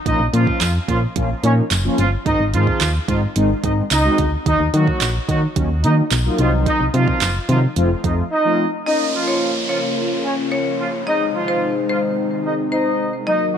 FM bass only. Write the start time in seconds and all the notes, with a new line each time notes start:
0.06 A#1
0.20 A#1
0.33 A#2
0.61 F2
0.88 A#2
1.16 A#1
1.43 A#2
1.71 F#1
1.99 G1
2.26 G#1
2.40 G#1
2.53 G#2
2.81 D#2
3.08 G#2
3.36 G#1
3.64 G#2
3.91 C#2
4.19 D2
4.46 D#2
4.60 D#2
4.74 D#3
5.01 A#1
5.29 D#3
5.56 D#2
5.84 D#3
6.11 B1
6.39 C2
6.80 C2
6.94 C3
7.21 F#1
7.49 C3
7.77 F1
8.04 F2